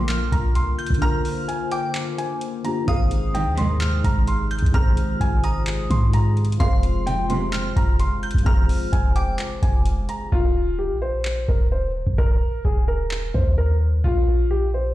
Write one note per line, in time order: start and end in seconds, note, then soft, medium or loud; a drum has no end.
0.00 0.28 A#1 loud
0.00 0.19 D2 loud
0.00 0.19 A#2 loud
0.00 0.96 D3 medium
0.00 2.84 D3 medium
0.00 0.19 F3 loud
0.00 0.98 A#3 medium
0.00 2.84 A#3 medium
0.00 0.99 F4 medium
0.00 2.84 F4 medium
0.00 1.00 A#4 medium
0.00 0.29 C6 medium
0.09 0.75 F6 medium
0.09 clap loud
0.09 closed hi-hat medium
0.32 0.57 A#1 loud
0.32 0.50 A#5 medium
0.32 kick loud
0.32 closed hi-hat medium
0.55 0.66 C2 loud
0.55 0.73 C6 medium
0.55 closed hi-hat medium
0.79 1.01 G6 medium
0.79 closed hi-hat soft
0.86 1.02 A#1 loud
0.86 kick loud
0.86 closed hi-hat medium
0.94 2.59 D3 medium
0.94 closed hi-hat medium
1.00 2.61 A#3 medium
1.00 2.62 F4 medium
1.00 2.86 C5 medium
1.00 1.46 A#5 loud
1.00 1.68 F6 loud
1.00 closed hi-hat medium
1.05 2.63 A#4 medium
1.25 open hi-hat medium
1.48 1.66 G#5 medium
1.48 closed hi-hat medium
1.72 1.90 G5 medium
1.72 2.38 D6 medium
1.72 closed hi-hat medium
1.95 clap loud
1.95 closed hi-hat medium
2.18 2.62 G#5 medium
2.18 closed hi-hat medium
2.41 closed hi-hat medium
2.63 2.87 D3 medium
2.63 2.88 A#3 soft
2.63 2.88 F4 soft
2.63 2.89 G4 medium
2.63 2.83 A#5 medium
2.63 closed hi-hat medium
2.84 3.48 G#1 loud
2.84 10.28 C3 medium
2.84 4.68 D#3 medium
2.84 10.28 G#3 medium
2.84 4.69 C4 medium
2.84 4.72 D#4 medium
2.84 10.28 G#4 medium
2.84 3.32 F5 loud
2.84 3.77 D#6 loud
2.84 kick loud
2.84 closed hi-hat medium
2.89 4.71 G#4 medium
2.89 4.72 C5 medium
3.11 closed hi-hat medium
3.34 3.44 C2 medium
3.34 3.44 G#2 medium
3.34 3.44 D#3 medium
3.34 3.53 G5 medium
3.34 closed hi-hat medium
3.46 4.01 D#2 loud
3.58 3.91 C2 medium
3.58 3.91 G#2 loud
3.58 3.91 D#3 loud
3.58 4.01 C6 medium
3.58 closed hi-hat medium
3.81 4.47 F6 medium
3.81 clap loud
3.81 closed hi-hat medium
4.04 4.60 G#1 loud
4.04 4.22 A#5 medium
4.04 kick medium
4.04 closed hi-hat medium
4.27 4.46 C6 medium
4.27 closed hi-hat medium
4.51 4.73 G6 medium
4.51 closed hi-hat soft
4.59 4.74 C2 loud
4.59 kick loud
4.59 closed hi-hat medium
4.66 closed hi-hat medium
4.71 4.96 G#1 loud
4.71 6.55 D#3 medium
4.71 6.56 C4 medium
4.71 10.28 F4 medium
4.71 5.18 A#5 medium
4.71 5.40 F6 loud
4.71 kick loud
4.71 closed hi-hat medium
4.76 6.57 G#4 medium
4.76 6.58 C5 medium
4.97 closed hi-hat medium
5.21 5.88 G#1 loud
5.21 5.39 G#5 medium
5.21 kick medium
5.21 closed hi-hat medium
5.44 5.88 A#5 medium
5.44 6.10 D#6 medium
5.44 closed hi-hat medium
5.67 clap loud
5.67 closed hi-hat medium
5.90 6.57 G#2 loud
5.90 6.08 C6 medium
5.90 kick medium
5.90 closed hi-hat medium
6.13 6.32 A#5 medium
6.13 closed hi-hat medium
6.37 closed hi-hat soft
6.45 closed hi-hat soft
6.52 closed hi-hat medium
6.57 7.72 F1 loud
6.57 8.41 F3 medium
6.57 8.42 C4 medium
6.57 7.04 F5 loud
6.57 7.49 C6 loud
6.57 kick loud
6.57 closed hi-hat medium
6.62 8.43 G#4 medium
6.62 8.44 C5 medium
6.83 closed hi-hat medium
7.07 7.17 G#1 medium
7.07 7.17 F2 medium
7.07 7.17 C3 loud
7.07 7.25 G5 loud
7.07 closed hi-hat medium
7.30 7.63 G#1 loud
7.30 7.63 F2 loud
7.30 7.63 C3 loud
7.30 7.74 C6 medium
7.30 closed hi-hat medium
7.53 8.19 F6 medium
7.53 clap loud
7.53 closed hi-hat medium
7.76 8.01 F1 loud
7.76 7.94 A#5 medium
7.76 kick medium
7.76 closed hi-hat medium
8.00 8.11 G1 loud
8.00 8.18 C6 medium
8.00 closed hi-hat medium
8.23 8.45 G6 medium
8.23 closed hi-hat soft
8.31 8.46 F1 loud
8.31 kick medium
8.31 closed hi-hat medium
8.38 10.27 F3 medium
8.38 closed hi-hat medium
8.45 8.68 F1 loud
8.45 10.28 C4 medium
8.45 10.29 G#4 medium
8.45 8.90 A#5 loud
8.45 9.12 F6 loud
8.45 kick loud
8.45 closed hi-hat medium
8.49 10.30 C5 medium
8.69 open hi-hat medium
8.93 9.37 F1 loud
8.93 9.11 G#5 medium
8.93 kick medium
8.93 closed hi-hat medium
9.16 9.34 G5 medium
9.16 9.82 D6 medium
9.16 closed hi-hat medium
9.39 clap loud
9.39 closed hi-hat medium
9.62 10.07 F1 loud
9.62 10.06 G#5 medium
9.62 kick medium
9.62 closed hi-hat medium
9.86 closed hi-hat medium
10.09 10.27 A#5 medium
10.09 closed hi-hat medium
10.32 10.92 D#1 loud
10.32 10.76 F4 loud
10.32 kick loud
10.79 10.97 G4 medium
10.90 11.46 A#1 loud
11.02 11.46 C5 medium
11.25 clap loud
11.48 12.04 D#1 loud
11.48 11.66 A#4 medium
11.48 kick medium
11.72 11.90 C5 medium
12.07 12.18 G1 loud
12.07 kick medium
12.18 12.41 D#1 loud
12.18 12.62 A#4 loud
12.18 kick loud
12.65 13.32 D#1 loud
12.65 12.83 G#4 medium
12.65 kick medium
12.88 13.32 A#4 medium
13.11 clap loud
13.34 14.01 D#2 loud
13.34 13.52 C5 medium
13.34 kick medium
13.58 13.76 A#4 medium
14.04 14.94 A#1 loud
14.04 14.48 F4 loud
14.04 kick loud
14.51 14.69 G4 medium
14.74 14.94 C5 medium